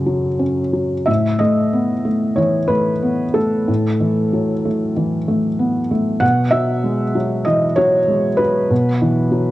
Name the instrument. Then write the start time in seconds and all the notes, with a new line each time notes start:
felt piano
Already playing: F#2 C#3 F#3 C#4 A4
0.06 F#3
0.39 C#4
0.73 F#3
1.06 A2 E5
1.39 A3 D#5
1.73 B3
2.05 A3
2.36 E3 C#5
2.68 A3 B4
3.02 B3
3.34 A3 A4
3.68 A2
4.00 E3
4.33 F#3
4.65 A3
4.97 E3
5.28 A3
5.59 B3
5.91 A3
6.20 B2 F#5
6.51 F#3 E5
6.84 G#3
7.15 F#3
7.45 E3 D#5
7.76 F#3 C#5
8.08 G#3
8.37 F#3 B4
8.70 B2
9.02 E3
9.31 F#3